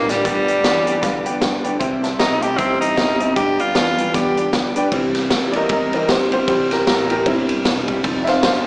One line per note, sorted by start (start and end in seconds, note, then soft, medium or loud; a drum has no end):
0.00 0.24 A2 medium
0.00 0.11 A#3 medium
0.08 0.23 G2 medium
0.08 0.23 D3 medium
0.08 0.25 G3 medium
0.08 0.25 G3 soft
0.08 0.25 B3 soft
0.08 0.26 D4 soft
0.08 0.25 G4 medium
0.08 0.18 B4 medium
0.08 0.19 D5 medium
0.08 0.19 G5 medium
0.08 snare soft
0.08 closed hi-hat medium
0.24 0.60 G2 medium
0.24 0.48 G2 medium
0.24 0.63 G2 medium
0.24 0.60 D3 medium
0.24 0.48 D3 medium
0.24 1.01 G3 loud
0.24 0.48 G3 medium
0.24 0.49 B3 medium
0.24 0.48 D4 medium
0.24 0.47 G4 medium
0.24 0.38 B4 medium
0.24 0.39 D5 medium
0.24 0.39 G5 loud
0.24 kick loud
0.24 closed hi-hat medium
0.47 0.62 G3 soft
0.47 0.63 B3 soft
0.47 0.64 D4 soft
0.47 0.64 G4 medium
0.47 0.57 B4 medium
0.47 0.58 D5 medium
0.47 0.58 G5 medium
0.47 closed hi-hat medium
0.63 1.02 F2 loud
0.63 0.84 G2 medium
0.63 0.84 E3 loud
0.63 0.86 G3 medium
0.63 0.87 B3 medium
0.63 0.86 D4 medium
0.63 0.86 G4 medium
0.63 0.77 B4 medium
0.63 0.78 D5 medium
0.63 0.78 G5 medium
0.63 snare loud
0.63 closed hi-hat medium
0.86 1.01 G2 medium
0.86 1.01 E3 medium
0.86 1.03 G3 medium
0.86 1.03 B3 medium
0.86 1.03 D4 medium
0.86 1.03 G4 medium
0.86 0.96 B4 medium
0.86 0.97 D5 medium
0.86 0.97 G5 loud
0.86 closed hi-hat medium
1.02 1.41 E2 medium
1.02 1.38 G2 medium
1.02 1.26 G2 medium
1.02 1.38 D3 loud
1.02 1.26 D3 loud
1.02 1.26 G3 medium
1.02 1.26 B3 medium
1.02 1.25 D4 medium
1.02 1.25 G4 loud
1.02 1.16 B4 loud
1.02 1.16 D5 loud
1.02 1.17 F5 loud
1.02 kick loud
1.02 snare soft
1.02 closed hi-hat medium
1.25 1.40 G3 medium
1.25 1.41 B3 medium
1.25 1.42 D4 medium
1.25 1.42 G4 medium
1.25 1.35 B4 medium
1.25 1.35 D5 medium
1.25 1.35 G5 loud
1.25 closed hi-hat medium
1.41 1.79 D2 medium
1.41 1.62 G2 medium
1.41 1.62 D3 loud
1.41 1.65 G3 medium
1.41 1.65 B3 medium
1.41 1.64 G4 medium
1.41 1.55 B4 medium
1.41 1.55 D5 medium
1.41 1.56 G5 loud
1.41 kick medium
1.41 snare loud
1.41 closed hi-hat medium
1.64 1.79 G2 medium
1.64 1.79 D3 medium
1.64 1.80 G3 soft
1.64 1.81 B3 medium
1.64 1.81 D4 medium
1.64 1.81 G4 medium
1.64 1.74 B4 medium
1.64 1.74 D5 medium
1.64 1.75 G5 medium
1.64 closed hi-hat medium
1.79 2.18 C2 medium
1.79 2.16 C3 medium
1.79 2.03 C3 medium
1.79 2.16 G3 medium
1.79 2.04 G3 medium
1.79 2.04 C4 medium
1.79 2.03 E4 loud
1.79 2.02 G4 medium
1.79 1.94 C5 loud
1.79 1.94 E5 loud
1.79 1.95 G5 loud
1.79 kick loud
1.79 closed hi-hat medium
2.02 2.19 C4 medium
2.02 2.20 E4 medium
2.02 2.19 G4 medium
2.02 2.12 C5 medium
2.02 2.13 E5 medium
2.02 2.13 A5 loud
2.02 snare soft
2.02 closed hi-hat medium
2.19 2.57 B1 medium
2.19 2.40 C3 medium
2.19 2.42 G3 medium
2.19 2.40 A3 medium
2.19 2.44 D#4 medium
2.19 2.42 E4 medium
2.19 2.33 C5 medium
2.19 2.33 E5 medium
2.19 2.34 G5 medium
2.19 snare loud
2.19 closed hi-hat medium
2.41 2.57 C3 medium
2.41 2.57 A3 medium
2.41 2.57 C4 soft
2.41 2.58 E4 medium
2.41 2.58 G4 medium
2.41 2.59 G4 medium
2.41 2.51 C5 medium
2.41 2.52 E5 medium
2.41 2.52 A5 medium
2.41 closed hi-hat medium
2.58 2.96 A1 medium
2.58 2.81 C3 medium
2.58 2.94 C3 medium
2.58 2.81 G3 medium
2.58 2.95 G3 loud
2.58 2.80 C4 loud
2.58 2.81 C4 medium
2.58 2.80 E4 medium
2.58 2.78 G4 medium
2.58 2.72 C5 loud
2.58 2.72 E5 medium
2.58 2.73 G5 loud
2.58 kick loud
2.58 closed hi-hat medium
2.79 2.96 C4 soft
2.79 3.35 D#4 medium
2.79 2.97 E4 soft
2.79 2.97 G4 medium
2.79 2.91 C5 medium
2.79 2.91 E5 medium
2.79 2.92 G5 medium
2.79 closed hi-hat medium
2.96 3.35 G1 medium
2.96 3.18 C3 medium
2.96 3.20 G3 medium
2.96 3.18 G3 medium
2.96 3.20 E4 medium
2.96 3.18 G4 medium
2.96 3.11 C5 medium
2.96 3.11 E5 medium
2.96 3.12 G5 medium
2.96 kick medium
2.96 snare loud
2.96 closed hi-hat medium
3.19 3.35 C3 medium
3.19 3.35 G3 medium
3.19 3.37 C4 soft
3.19 3.37 E4 soft
3.19 3.36 G4 medium
3.19 3.29 C5 medium
3.19 3.30 E5 medium
3.19 3.30 A5 medium
3.19 closed hi-hat medium
3.36 3.72 G2 medium
3.36 3.59 G2 medium
3.36 3.74 G2 medium
3.36 3.72 D3 medium
3.36 3.59 D3 medium
3.36 3.60 G3 medium
3.36 3.59 B3 medium
3.36 3.58 D4 medium
3.36 3.61 G4 loud
3.36 3.57 G4 medium
3.36 3.50 B4 medium
3.36 3.50 D5 medium
3.36 3.51 G5 loud
3.36 kick loud
3.36 closed hi-hat medium
3.58 3.74 G3 soft
3.58 3.75 B3 soft
3.58 3.75 D4 medium
3.58 4.16 F4 medium
3.58 3.75 G4 medium
3.58 3.69 B4 medium
3.58 3.69 D5 medium
3.58 3.69 F5 medium
3.58 closed hi-hat medium
3.74 4.13 F2 medium
3.74 3.96 G2 medium
3.74 3.96 E3 medium
3.74 3.98 G3 medium
3.74 3.99 B3 medium
3.74 3.98 D4 medium
3.74 3.97 G4 medium
3.74 3.89 B4 medium
3.74 3.89 D5 medium
3.74 3.90 A5 medium
3.74 snare loud
3.74 closed hi-hat medium
3.98 4.13 G2 medium
3.98 4.13 E3 medium
3.98 4.14 G3 soft
3.98 4.14 B3 soft
3.98 4.14 D4 medium
3.98 4.14 G4 medium
3.98 4.08 B4 medium
3.98 4.08 D5 medium
3.98 4.08 G5 medium
3.98 closed hi-hat medium
4.13 4.52 E2 medium
4.13 4.37 G2 medium
4.13 4.50 G2 medium
4.13 4.37 D3 medium
4.13 4.50 D3 loud
4.13 4.38 G3 medium
4.13 4.37 B3 medium
4.13 4.36 D4 medium
4.13 4.52 G4 medium
4.13 4.35 G4 medium
4.13 4.28 B4 loud
4.13 4.28 D5 medium
4.13 4.29 G5 loud
4.13 kick loud
4.13 snare soft
4.13 closed hi-hat medium
4.36 4.51 G3 soft
4.36 4.52 B3 medium
4.36 4.53 D4 medium
4.36 4.53 G4 medium
4.36 4.47 B4 medium
4.36 4.47 D5 medium
4.36 4.48 G5 medium
4.36 closed hi-hat medium
4.52 4.91 D2 medium
4.52 4.74 G2 medium
4.52 4.74 D3 loud
4.52 4.76 G3 medium
4.52 4.76 B3 medium
4.52 4.75 D4 medium
4.52 4.74 G4 medium
4.52 4.67 B4 medium
4.52 4.67 D5 medium
4.52 4.68 G5 medium
4.52 kick medium
4.52 snare loud
4.52 closed hi-hat medium
4.75 4.91 G2 medium
4.75 4.91 D3 medium
4.75 4.91 G3 soft
4.75 4.92 B3 soft
4.75 4.92 D4 medium
4.75 4.92 G4 medium
4.75 4.86 B4 medium
4.75 4.86 D5 medium
4.75 4.87 G5 medium
4.75 closed hi-hat medium
4.92 5.30 C2 loud
4.92 5.15 C3 medium
4.92 5.28 C3 medium
4.92 5.92 E3 medium
4.92 5.28 G3 medium
4.92 5.15 G3 medium
4.92 5.93 G3 soft
4.92 5.15 C4 medium
4.92 5.93 C4 medium
4.92 5.15 E4 medium
4.92 5.14 G4 medium
4.92 kick loud
4.92 ride medium
5.15 5.30 C4 soft
5.15 5.31 E4 medium
5.15 5.31 G4 medium
5.15 snare soft
5.15 ride medium
5.30 5.69 E2 medium
5.30 5.52 C3 medium
5.30 5.54 G3 medium
5.30 5.52 A3 medium
5.30 5.54 C4 medium
5.30 5.54 E4 medium
5.30 5.52 G4 medium
5.30 snare loud
5.30 ride medium
5.52 5.68 C3 medium
5.52 5.68 A3 medium
5.52 5.69 C4 soft
5.52 5.70 E4 soft
5.52 5.70 G4 medium
5.52 5.54 D5 medium
5.52 ride medium
5.56 5.70 A#4 medium
5.56 5.71 D#5 medium
5.69 6.08 E2 medium
5.69 6.05 C3 medium
5.69 5.93 C3 medium
5.69 6.06 G3 loud
5.69 5.93 G3 medium
5.69 5.93 C4 medium
5.69 5.93 E4 medium
5.69 5.92 G4 medium
5.69 5.92 A#4 medium
5.69 5.94 D#5 loud
5.69 kick loud
5.69 ride medium
5.93 6.08 E3 medium
5.93 6.08 G3 soft
5.93 6.08 C4 medium
5.93 6.09 C4 soft
5.93 6.10 E4 soft
5.93 6.09 G4 medium
5.93 6.09 A#4 medium
5.93 6.10 D#5 medium
5.93 ride medium
6.08 6.47 D2 medium
6.08 6.30 C3 medium
6.08 6.30 G3 medium
6.08 6.32 G3 medium
6.08 6.33 C4 medium
6.08 6.32 E4 medium
6.08 6.31 G4 medium
6.08 6.30 G4 medium
6.08 6.32 C5 medium
6.08 snare loud
6.08 ride medium
6.31 6.46 C3 medium
6.31 6.46 G3 medium
6.31 6.48 C4 soft
6.31 6.48 E4 soft
6.31 6.48 G4 medium
6.31 6.47 G4 medium
6.31 6.48 C5 medium
6.31 ride medium
6.47 6.86 C2 medium
6.47 6.84 C3 medium
6.47 6.71 C3 medium
6.47 8.00 E3 medium
6.47 8.00 G3 soft
6.47 6.71 G3 medium
6.47 6.84 G3 medium
6.47 7.25 C4 medium
6.47 6.71 C4 medium
6.47 6.70 E4 medium
6.47 6.70 G4 medium
6.47 6.69 G4 medium
6.47 6.71 C5 medium
6.47 kick loud
6.47 ride medium
6.70 6.86 C4 soft
6.70 6.87 E4 soft
6.70 6.87 G4 medium
6.70 6.87 A#4 medium
6.70 snare soft
6.70 ride medium
6.87 7.25 A1 medium
6.87 7.08 C3 medium
6.87 7.10 G3 medium
6.87 7.08 A3 loud
6.87 7.10 C4 medium
6.87 7.09 E4 medium
6.87 7.09 G4 medium
6.87 7.08 G4 medium
6.87 7.10 A#4 medium
6.87 snare loud
6.87 ride medium
7.09 7.25 C3 medium
7.09 7.25 A3 medium
7.09 7.25 C4 soft
7.09 7.26 E4 medium
7.09 7.26 G4 medium
7.09 7.27 A#4 medium
7.09 ride medium
7.26 7.64 G1 medium
7.26 7.49 C3 medium
7.26 7.62 C3 medium
7.26 7.62 G3 loud
7.26 7.49 G3 medium
7.26 7.48 C4 loud
7.26 7.49 C4 medium
7.26 7.49 E4 medium
7.26 7.49 E4 loud
7.26 7.47 G4 medium
7.26 kick loud
7.26 ride medium
7.48 7.64 C4 soft
7.48 7.64 E4 medium
7.48 7.65 G4 medium
7.48 ride medium
7.64 8.03 E1 medium
7.64 7.86 C3 medium
7.64 7.88 G3 medium
7.64 7.86 G3 medium
7.64 7.88 C4 medium
7.64 7.88 E4 medium
7.64 7.87 G4 medium
7.64 snare loud
7.64 ride medium
7.88 8.03 C3 medium
7.88 8.03 G3 medium
7.88 8.03 C4 soft
7.88 8.04 E4 medium
7.88 8.04 G4 medium
7.88 kick medium
7.88 ride medium
8.03 8.42 F1 medium
8.03 8.40 F2 medium
8.03 8.40 C3 medium
8.03 8.27 F3 medium
8.03 8.27 C4 medium
8.03 8.26 F4 medium
8.03 8.25 A4 medium
8.03 kick loud
8.03 ride medium
8.24 8.43 F4 medium
8.24 8.43 A4 medium
8.24 8.26 E5 medium
8.24 snare soft
8.24 ride medium
8.28 8.42 C4 soft
8.28 8.43 C5 medium
8.28 8.44 F5 loud
8.43 8.67 G1 medium
8.43 8.64 F2 medium
8.43 8.64 D3 medium
8.43 8.66 F3 medium
8.43 8.67 C4 medium
8.43 8.66 F4 medium
8.43 8.64 A4 medium
8.43 8.65 C5 medium
8.43 8.66 F5 medium
8.43 snare loud
8.43 ride medium